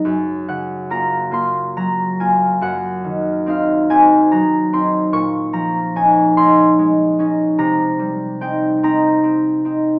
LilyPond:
\new Staff \with { instrumentName = "Harp" } { \time 6/8 \key ees \dorian \tempo 4. = 48 << { <des'' ges''>8 ges''8 bes''8 c'''8 bes''8 aes''8 | ges''4 f''8 aes''8 bes''8 c'''8 | \key bes \dorian des'''8 bes''8 aes''8 c'''4. | bes''4 g''8 bes''4. | } \\ { <ges, ges>8 des8 <bes f'>8 <bes f'>8 ges8 <bes f'>8 | ges,8 ees8 <c' ees'>8 <c' ees'>8 ges8 <c' ees'>8 | bes,8 f8 <des' ees'>8 <des' ees'>8 aes8 <des' ees'>8 | c8 g8 <c' ees'>8 <c' ees'>8 c'8 <c' ees'>8 | } >> }